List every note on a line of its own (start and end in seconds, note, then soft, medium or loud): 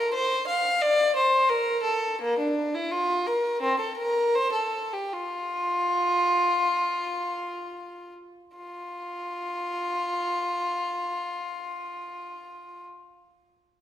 0.00 0.13 A#4 medium
0.14 0.46 C5 medium
0.48 0.80 F5 medium
0.82 1.15 D5 loud
1.16 1.48 C5 medium
1.49 1.83 A#4 medium
1.83 2.19 A4 medium
2.22 2.39 A#3 medium
2.38 2.73 D4 medium
2.74 2.91 E4 medium
2.91 3.25 F4 medium
3.27 3.61 A#4 medium
3.62 3.79 C4 medium
3.80 3.97 A4 medium
3.97 4.33 A#4 medium
4.35 4.54 C5 medium
4.53 4.92 A4 medium
4.93 5.13 G4 medium
5.13 8.11 F4 medium
8.57 12.84 F4 medium